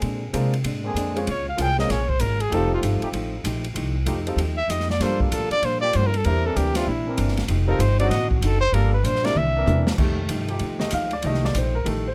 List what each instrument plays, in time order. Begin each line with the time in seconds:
Already playing: trombone section D3 A#3 C4 G#4
0.01 hollow-body jazz guitar A#2 G#3 C4 D4, upright bass A#2, ride
0.33 hollow-body jazz guitar A#2 G#3 C4 D4, upright bass C3, grand piano G#3 C4 D4 F4 A#4, hi-hat pedal, ride
0.53 ride
0.64 upright bass G#2, hollow-body jazz guitar A#2 G#3 C4 D4, ride
0.84 trombone section D3 A#3 C4 G#4
0.94 upright bass F2, hollow-body jazz guitar A#2 G#3 C4 D4, hi-hat pedal, ride
1.16 grand piano G#3 C4 C#4 F4 C#5, ride
1.26 upright bass C#2, hollow-body jazz guitar A#2 G#3 C#4 F4, trumpet C#5, ride
1.49 trumpet F5
1.57 upright bass C2, hollow-body jazz guitar A#2 G#3 C#4 F4, trombone section F3 A#3 C#4 G#4, hi-hat pedal, ride
1.61 trumpet G5
1.78 grand piano G#3 C4 C#4 F4 A#4, trumpet D#5, snare
1.88 upright bass A#1, hollow-body jazz guitar A#2 G#3 C#4 F4, trombone section F3 A#3 C#4 G#4, trumpet C#5, snare, ride
2.09 trumpet C5, kick
2.19 upright bass G#1, hollow-body jazz guitar A#2 G#3 C#4 F4, trumpet A#4, hi-hat pedal, ride
2.40 trumpet G#4, ride
2.49 upright bass F1, trombone section F3 A3 D#4 G4, hollow-body jazz guitar F3 A3, ride
2.53 grand piano G3 C4 D#4 F4 A4, hollow-body jazz guitar D#4 G4, trumpet A4
2.74 trumpet F4
2.82 upright bass G1, hollow-body jazz guitar F3 A3 D#4 G4, hi-hat pedal, ride
3.00 trombone section F3 A3 D#4 G4, muted upright bass stroke, ride
3.12 upright bass A1, hollow-body jazz guitar F3 A3 D#4, ride
3.17 hollow-body jazz guitar G4
3.44 upright bass A#1, hollow-body jazz guitar F3 A3 D#4 G4, hi-hat pedal, ride
3.64 ride
3.74 upright bass C2, hollow-body jazz guitar F3 A3 D#4 G4, ride
4.06 upright bass F2, hollow-body jazz guitar F3 A3 D#4 G4, trombone section F3 A3 D#4 G4, hi-hat pedal, ride
4.26 grand piano G3 C4 D#4 F4 A4, ride
4.36 upright bass D#2, hollow-body jazz guitar F3 A3 D#4, ride
4.40 hollow-body jazz guitar G4
4.58 trumpet E5
4.68 upright bass F2, hollow-body jazz guitar F3 A3 D#4 G4, trumpet D#5, hi-hat pedal, ride
4.80 snare
4.90 trumpet D5, snare
4.99 hollow-body jazz guitar G2 F3 A#3 D4, upright bass G2, grand piano G3 A#3 D4 F4 A4, trumpet C5, snare, ride
5.20 trumpet F4, kick
5.30 hollow-body jazz guitar G2 F3 A#3 D4, upright bass A2, trumpet A4, hi-hat pedal, ride
5.50 trumpet D5, muted upright bass stroke, ride
5.62 hollow-body jazz guitar G2 F3 A#3 D4, upright bass A#2, trumpet C5, ride
5.81 trombone section F3 A#3 D4 G4, trumpet D5
5.93 hollow-body jazz guitar G2 F3 A#3 D4, upright bass G2, trumpet C5, hi-hat pedal, ride
6.07 trumpet A#4
6.14 trumpet A4, ride
6.24 upright bass E2, hollow-body jazz guitar C3 E3 A#3 D4, grand piano G3 C4 D4 E4 A#4, trumpet A#4, ride
6.43 trombone section E3 C4 D4 A#4, trumpet A4
6.55 upright bass D2, hollow-body jazz guitar C3 E3 A#3 D4, trumpet G4, hi-hat pedal, ride
6.75 grand piano G3 C4 D4 E4 G4, trumpet F4, snare, ride
6.85 upright bass A#1, hollow-body jazz guitar C3 E3 A#3 D4, trumpet E4
7.06 trombone section E3 C4 D4 A#4
7.17 upright bass G1, hollow-body jazz guitar C3 E3 A#3 D4, hi-hat pedal, ride
7.28 snare
7.37 snare, ride
7.48 upright bass F1, hollow-body jazz guitar F3 A3 D#4 G4, ride
7.67 grand piano G3 C4 D#4 F4 A4, trumpet A#4
7.79 upright bass G1, hollow-body jazz guitar F3 A3 D#4 G4, trumpet C5, hi-hat pedal, ride
7.99 trombone section D#3 C4 D4 F#4, grand piano F#3 C4 D4 D#4 F#4, trumpet D5, ride
8.09 upright bass A1, hollow-body jazz guitar D3 C4 D#4, trumpet D#5, snare, ride
8.13 hollow-body jazz guitar F#4
8.31 trumpet F#4, kick
8.41 upright bass F#1, hollow-body jazz guitar D3 C4 D#4 F#4, trumpet A4, hi-hat pedal, ride
8.61 trumpet C5
8.72 upright bass G1, hollow-body jazz guitar G2 F3 A#3 D4, grand piano G3 A#3 D4 F4 A4, trumpet A#4, ride
8.94 trumpet B4
9.03 upright bass A#1, hollow-body jazz guitar G2 F3 A#3 D4, trumpet C5, hi-hat pedal, ride
9.15 snare
9.23 grand piano G3 C4 D4 E4 A#4, trumpet D5, snare, ride
9.35 upright bass C2, hollow-body jazz guitar C3 E3 A#3 D4, trumpet E5, high tom
9.56 trombone section E3 C4 D4 A#4
9.66 upright bass E2, hollow-body jazz guitar C3 E3 A#3 D4, hi-hat pedal, mid tom
9.87 snare
9.97 upright bass F2, grand piano D#3 G3 A3, hollow-body jazz guitar F3 A3 D#4 G4, kick, crash
10.29 upright bass G2, hollow-body jazz guitar F3 A3 D#4 G4, hi-hat pedal, ride
10.48 trombone section F3 A3 D#4 G4, ride
10.59 upright bass D#2, hollow-body jazz guitar F3 A3 D#4 G4, ride
10.79 grand piano D#3 G3 A3 D#5, snare
10.90 upright bass D2, hollow-body jazz guitar F3 A3 D#4 G4, grand piano F5, hi-hat pedal, ride
11.11 grand piano D5, ride
11.22 upright bass C2, grand piano D#3 G3 A3, hollow-body jazz guitar F3 A3 D#4 G4, ride
11.26 grand piano D#5
11.34 snare
11.45 grand piano D5, snare
11.53 upright bass A#1, hollow-body jazz guitar F3 A3 D#4 G4, hi-hat pedal, ride
11.58 grand piano C5
11.75 grand piano A#4
11.84 upright bass A1, grand piano D#3 G3 A3 A4, hollow-body jazz guitar F3 A3 D#4 G4, ride
12.08 grand piano C5